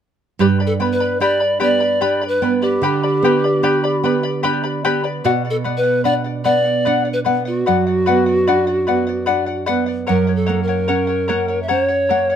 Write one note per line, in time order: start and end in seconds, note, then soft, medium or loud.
0.39 2.78 G2 medium
0.39 0.46 G4 medium
0.39 0.60 G4 medium
0.39 0.61 B4 medium
0.39 0.60 D5 medium
0.39 0.61 G5 medium
0.39 0.59 B5 medium
0.60 0.79 B4 soft
0.60 0.80 D5 soft
0.60 0.80 B5 soft
0.67 0.73 A4 medium
0.80 1.19 B3 soft
0.80 1.00 B4 soft
0.80 0.99 D5 soft
0.80 1.00 G5 soft
0.80 0.99 B5 medium
0.93 1.18 B4 medium
1.00 1.20 B4 soft
1.00 1.20 D5 soft
1.00 1.21 B5 soft
1.20 1.60 D4 soft
1.20 1.41 G4 medium
1.20 1.40 B4 medium
1.20 1.58 D5 medium
1.20 1.40 D5 medium
1.20 1.41 G5 medium
1.20 1.39 B5 medium
1.40 1.59 B4 soft
1.40 1.59 D5 soft
1.40 1.60 B5 soft
1.60 2.00 B3 soft
1.60 1.81 G4 medium
1.60 1.81 B4 medium
1.60 1.80 D5 medium
1.60 2.25 D5 medium
1.60 1.81 G5 medium
1.60 1.79 B5 medium
1.80 2.00 B4 soft
1.80 2.00 D5 soft
1.80 2.01 B5 soft
2.01 2.41 D4 soft
2.01 2.21 G4 medium
2.01 2.22 B4 medium
2.01 2.22 D5 medium
2.01 2.22 G5 medium
2.01 2.20 B5 medium
2.21 2.42 B4 soft
2.21 2.42 D5 soft
2.21 2.42 B5 soft
2.28 2.53 B4 medium
2.42 2.81 B3 soft
2.42 2.63 B4 medium
2.42 2.62 D5 soft
2.42 2.62 G5 soft
2.42 2.61 B5 medium
2.62 4.80 G4 medium
2.62 2.82 B4 soft
2.62 2.82 D5 soft
2.62 2.83 B5 soft
2.82 5.20 D3 medium
2.82 3.03 G4 medium
2.82 3.03 B4 medium
2.82 3.02 D5 medium
2.82 3.03 G5 medium
2.82 3.02 B5 medium
3.03 3.23 B4 soft
3.03 3.23 D5 soft
3.03 3.23 B5 soft
3.22 3.62 B3 soft
3.22 3.44 G4 medium
3.22 3.44 B4 medium
3.22 3.44 D5 medium
3.22 3.44 G5 medium
3.22 3.43 B5 medium
3.44 3.62 B4 soft
3.44 3.63 D5 soft
3.44 3.63 B5 soft
3.63 4.02 D4 soft
3.63 3.83 G4 medium
3.63 3.83 B4 medium
3.63 3.83 D5 medium
3.63 3.84 G5 medium
3.63 3.83 B5 medium
3.84 4.03 B4 soft
3.84 4.04 D5 soft
3.84 4.04 B5 medium
4.03 4.43 B3 soft
4.03 4.24 B4 medium
4.03 4.23 D5 medium
4.03 4.24 G5 medium
4.03 4.22 B5 medium
4.23 4.42 B4 soft
4.23 4.43 D5 soft
4.23 4.43 B5 medium
4.43 4.83 D4 soft
4.43 4.64 G4 medium
4.43 4.63 B4 medium
4.43 4.63 D5 medium
4.43 4.64 G5 medium
4.43 4.62 B5 medium
4.64 4.83 B4 soft
4.64 4.84 D5 soft
4.64 4.84 B5 medium
4.85 5.24 B3 soft
4.85 5.05 G4 medium
4.85 5.03 B4 medium
4.85 5.03 D5 medium
4.85 5.05 G5 medium
4.85 5.02 B5 medium
5.04 5.23 B4 soft
5.04 5.24 D5 soft
5.04 5.24 B5 soft
5.24 7.63 B2 medium
5.24 5.31 F#4 medium
5.24 5.45 B4 medium
5.24 5.45 D5 medium
5.24 5.43 F#5 medium
5.45 5.64 D5 soft
5.45 5.64 F#5 soft
5.50 5.57 A4 medium
5.64 6.04 B3 soft
5.64 5.85 B4 medium
5.64 5.84 D5 medium
5.64 5.82 F#5 medium
5.77 6.03 B4 medium
5.83 6.04 D5 soft
5.83 6.04 F#5 soft
6.04 6.44 D4 soft
6.04 6.25 B4 medium
6.04 6.14 D5 medium
6.04 6.25 D5 medium
6.04 6.23 F#5 medium
6.24 6.44 D5 soft
6.24 6.44 F#5 soft
6.44 6.85 B3 medium
6.44 6.65 B4 medium
6.44 7.08 D5 medium
6.44 6.65 D5 medium
6.44 6.63 F#5 medium
6.64 6.85 D5 soft
6.64 6.85 F#5 soft
6.85 7.26 D4 medium
6.85 7.06 B4 medium
6.85 7.05 D5 medium
6.85 7.04 F#5 medium
7.05 7.24 D5 soft
7.05 7.25 F#5 soft
7.13 7.19 B4 medium
7.25 7.65 B3 soft
7.25 7.46 B4 medium
7.25 7.46 D5 medium
7.25 7.44 F#5 medium
7.45 9.65 F#4 medium
7.45 7.66 D5 soft
7.45 7.66 F#5 soft
7.66 10.06 F#2 medium
7.66 7.87 B4 medium
7.66 7.87 D5 medium
7.66 7.85 F#5 medium
7.87 8.06 D5 soft
7.87 8.06 F#5 soft
8.06 8.47 B3 soft
8.06 8.27 B4 medium
8.06 8.27 D5 medium
8.06 8.25 F#5 medium
8.26 8.46 D5 soft
8.26 8.47 F#5 soft
8.47 8.87 D4 soft
8.47 8.68 B4 medium
8.47 8.67 D5 medium
8.47 8.66 F#5 medium
8.67 8.86 D5 soft
8.67 8.87 F#5 medium
8.87 9.27 B3 soft
8.87 9.08 B4 soft
8.87 9.08 D5 medium
8.87 9.06 F#5 medium
9.07 9.26 D5 soft
9.07 9.26 F#5 soft
9.26 9.68 D4 soft
9.26 9.47 B4 medium
9.26 9.47 D5 medium
9.26 9.45 F#5 medium
9.46 9.65 D5 soft
9.46 9.66 F#5 soft
9.66 10.08 B3 soft
9.66 9.88 B4 medium
9.66 9.87 D5 medium
9.66 9.85 F#5 medium
9.86 10.07 D5 soft
9.86 10.06 F#5 soft
10.07 12.36 F#2 medium
10.07 10.28 A#4 medium
10.07 10.34 A#4 medium
10.07 10.27 C#5 medium
10.07 10.26 F#5 medium
10.27 10.45 C#5 soft
10.27 10.46 F#5 soft
10.36 10.64 A4 medium
10.46 10.88 A#3 soft
10.46 10.68 A#4 medium
10.46 10.68 C#5 medium
10.46 10.66 F#5 medium
10.63 11.62 A#4 medium
10.68 10.87 C#5 soft
10.68 10.88 F#5 soft
10.88 11.28 C#4 soft
10.88 11.09 A#4 medium
10.88 11.08 C#5 medium
10.88 11.06 F#5 medium
11.07 11.28 C#5 soft
11.07 11.28 F#5 soft
11.28 11.69 A#3 soft
11.28 11.49 A#4 medium
11.28 11.48 C#5 medium
11.28 11.47 F#5 medium
11.48 11.67 C#5 soft
11.48 11.68 F#5 soft
11.63 11.72 E5 soft
11.68 12.10 C#4 soft
11.68 11.89 A#4 medium
11.68 11.84 C5 medium
11.68 11.88 C#5 medium
11.68 11.87 F#5 medium
11.84 12.36 C#5 medium
11.88 12.09 C#5 soft
11.88 12.09 F#5 soft
12.09 12.36 A#3 soft
12.09 12.30 A#4 soft
12.09 12.30 C#5 soft
12.09 12.28 F#5 medium
12.30 12.36 C#5 soft
12.30 12.36 F#5 soft